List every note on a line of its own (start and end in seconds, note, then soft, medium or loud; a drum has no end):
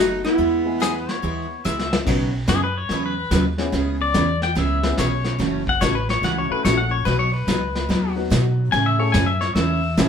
0.00 0.23 F#1 medium
0.00 0.36 A3 medium
0.00 0.36 B3 medium
0.00 0.23 D#4 medium
0.00 0.36 D#4 medium
0.00 0.24 F#4 medium
0.00 0.36 F#4 medium
0.25 1.61 B3 medium
0.25 1.60 E4 medium
0.25 snare soft
0.38 1.06 E2 medium
0.38 0.61 E3 medium
0.38 0.61 G#3 medium
0.38 0.61 B3 medium
0.38 0.61 E4 medium
0.38 0.62 G#4 medium
0.38 brush sweep soft
0.65 0.79 G#3 medium
0.65 0.79 B3 medium
0.65 0.80 E4 medium
0.65 0.80 G#4 medium
0.80 0.92 E3 medium
0.80 0.93 G#3 medium
0.80 0.93 B3 medium
0.80 0.93 E4 medium
0.80 0.93 G#4 medium
0.80 0.95 G#4 medium
0.80 snare medium
0.80 hi-hat pedal medium
0.96 1.10 B4 medium
1.09 1.64 C#5 medium
1.09 snare soft
1.22 1.59 D#2 medium
1.22 1.45 E3 medium
1.22 1.45 G#3 medium
1.22 1.45 B3 medium
1.22 1.45 E4 medium
1.22 1.46 G#4 medium
1.22 brush sweep soft
1.65 2.00 C#2 medium
1.65 1.76 E3 medium
1.65 1.76 G#3 medium
1.65 1.76 B3 medium
1.65 1.77 E4 medium
1.65 1.77 G#4 medium
1.65 1.98 E5 medium
1.65 hi-hat pedal medium
1.79 snare medium
1.93 snare medium
2.05 2.47 B1 medium
2.05 2.29 B2 medium
2.05 2.29 C#3 medium
2.05 2.29 F#3 medium
2.05 2.30 B3 medium
2.05 2.29 B3 medium
2.05 2.30 C#4 medium
2.05 2.30 D#4 medium
2.05 2.29 D#4 medium
2.05 2.31 F#4 medium
2.05 2.31 B4 medium
2.05 2.30 B4 medium
2.05 brush sweep soft
2.05 kick medium
2.05 snare soft
2.05 crash medium
2.48 2.88 F#2 medium
2.48 2.59 B2 medium
2.48 2.60 C#3 medium
2.48 2.60 F#3 medium
2.48 2.60 B3 medium
2.48 2.60 D#4 medium
2.48 2.62 G#4 medium
2.48 2.60 B4 medium
2.48 snare medium
2.48 hi-hat pedal medium
2.64 2.76 B4 medium
2.78 3.04 C#5 medium
2.89 3.30 E2 medium
2.89 3.12 B2 medium
2.89 3.13 C#3 medium
2.89 3.13 F#3 medium
2.89 3.13 B3 medium
2.89 3.13 D#4 medium
2.89 3.13 B4 medium
2.89 brush sweep soft
2.89 snare soft
3.06 3.45 B4 medium
3.31 3.71 D#2 medium
3.31 3.43 B2 medium
3.31 3.43 C#3 medium
3.31 3.43 F#3 medium
3.31 3.44 B3 medium
3.31 3.43 D#4 medium
3.31 3.44 B4 medium
3.31 snare medium
3.31 hi-hat pedal medium
3.58 4.11 B3 medium
3.58 4.12 C#4 medium
3.58 4.12 E4 medium
3.58 4.12 G#4 medium
3.58 4.12 C#5 medium
3.58 snare soft
3.72 4.13 C#2 medium
3.72 3.95 C#3 medium
3.72 3.95 E3 medium
3.72 3.95 B3 medium
3.72 3.95 C#4 medium
3.72 3.96 G#4 medium
3.72 brush sweep soft
3.72 snare soft
4.02 4.42 D5 loud
4.14 4.55 E2 loud
4.14 4.26 C#3 medium
4.14 4.26 E3 medium
4.14 4.26 B3 medium
4.14 4.26 C#4 medium
4.14 4.27 G#4 medium
4.14 snare medium
4.14 hi-hat pedal medium
4.42 4.56 G5 medium
4.42 snare soft
4.55 4.97 C#2 medium
4.55 4.78 C#3 medium
4.55 4.78 E3 medium
4.55 4.78 B3 medium
4.55 4.78 C#4 medium
4.55 4.78 G#4 medium
4.55 4.98 E5 medium
4.55 brush sweep medium
4.55 snare soft
4.83 5.36 B3 medium
4.83 5.37 C#4 medium
4.83 5.37 E4 medium
4.83 5.37 G#4 medium
4.83 5.37 B4 medium
4.83 snare medium
4.98 5.39 B1 medium
4.98 5.10 C#3 medium
4.98 5.10 E3 medium
4.98 5.11 B3 medium
4.98 5.11 C#4 medium
4.98 5.11 G#4 medium
4.98 5.39 C#5 medium
4.98 snare medium
4.98 hi-hat pedal medium
5.24 snare soft
5.38 5.80 F#1 medium
5.38 5.61 C#3 medium
5.38 5.62 E3 medium
5.38 5.62 A3 medium
5.38 5.62 C#4 medium
5.38 5.62 F#4 medium
5.38 brush sweep soft
5.38 snare soft
5.67 5.82 F#5 medium
5.67 kick medium
5.81 6.21 A1 medium
5.81 5.93 C#3 medium
5.81 5.93 E3 medium
5.81 5.93 A3 medium
5.81 5.93 C#4 medium
5.81 5.94 F#4 medium
5.81 5.95 C#5 loud
5.81 snare medium
5.81 hi-hat pedal medium
5.95 6.09 B4 medium
6.09 6.23 C#5 medium
6.09 snare soft
6.22 6.48 C#2 medium
6.22 6.45 C#3 medium
6.22 6.45 E3 medium
6.22 6.45 A3 medium
6.22 6.46 C#4 medium
6.22 6.46 F#4 medium
6.22 6.37 F#5 medium
6.22 brush sweep medium
6.22 snare soft
6.38 6.51 C#5 medium
6.49 7.03 A3 medium
6.49 7.03 C#4 medium
6.49 7.03 E4 medium
6.49 7.03 F#4 medium
6.49 7.04 A4 medium
6.49 6.64 B4 medium
6.49 muted upright bass stroke soft
6.65 7.05 A#1 medium
6.65 6.77 C#3 medium
6.65 6.77 E3 medium
6.65 6.77 A3 medium
6.65 6.77 C#4 medium
6.65 6.77 F#4 medium
6.65 6.78 C#5 medium
6.65 snare medium
6.65 hi-hat pedal medium
6.77 6.91 F#5 medium
6.91 7.05 C#5 medium
7.05 7.46 B1 medium
7.05 7.28 B2 medium
7.05 7.28 F#3 medium
7.05 7.28 B3 medium
7.05 7.29 D#4 medium
7.05 7.29 F#4 medium
7.05 7.19 B4 loud
7.05 brush sweep medium
7.05 snare soft
7.19 7.33 C#5 medium
7.34 8.15 B4 medium
7.47 7.88 C#2 medium
7.47 7.59 B2 medium
7.47 7.60 F#3 medium
7.47 7.60 B3 medium
7.47 7.60 D#4 medium
7.47 7.60 F#4 medium
7.47 snare medium
7.47 hi-hat pedal medium
7.75 snare soft
7.89 8.30 D#2 medium
7.89 8.11 B2 medium
7.89 8.12 F#3 medium
7.89 8.12 B3 medium
7.89 8.12 D#4 medium
7.89 8.12 F#4 medium
7.89 brush sweep medium
7.89 snare soft
8.16 8.70 F#3 medium
8.16 8.70 B3 medium
8.16 8.70 D#4 medium
8.16 8.70 F#4 medium
8.16 8.70 B4 medium
8.30 8.43 B2 medium
8.30 8.72 B2 loud
8.30 8.43 F#3 medium
8.30 8.43 B3 medium
8.30 8.43 D#4 medium
8.30 8.44 F#4 medium
8.30 snare medium
8.30 hi-hat pedal medium
8.72 9.14 A2 medium
8.72 8.95 C#3 medium
8.72 8.95 E3 medium
8.72 8.95 A3 medium
8.72 8.95 C#4 medium
8.72 8.96 G#4 medium
8.72 8.86 G#5 loud
8.72 brush sweep soft
8.72 snare soft
8.86 9.00 E5 loud
8.98 9.12 A3 medium
8.98 9.13 C#4 medium
8.98 9.13 E4 medium
8.98 9.13 G#4 medium
8.98 9.13 A4 medium
8.98 9.14 C#5 medium
9.12 9.54 F#2 medium
9.12 9.26 C#3 medium
9.12 9.26 E3 medium
9.12 9.26 A3 medium
9.12 9.27 C#4 medium
9.12 9.27 G#4 medium
9.12 9.27 G#5 medium
9.12 snare medium
9.12 hi-hat pedal medium
9.26 9.41 E5 medium
9.41 9.55 C#5 medium
9.41 snare soft
9.55 9.96 E2 medium
9.55 9.78 C#3 medium
9.55 9.78 E3 medium
9.55 9.79 A3 medium
9.55 9.79 C#4 medium
9.55 9.79 G#4 medium
9.55 10.09 E5 loud
9.55 brush sweep medium
9.55 snare soft
9.97 10.09 A1 medium
9.97 10.09 C#3 medium
9.97 10.09 E3 medium
9.97 10.09 A3 medium
9.97 10.09 C#4 medium
9.97 10.09 E4 medium
9.97 10.09 G#4 medium
9.97 10.09 A4 medium
9.97 snare medium
9.97 hi-hat pedal medium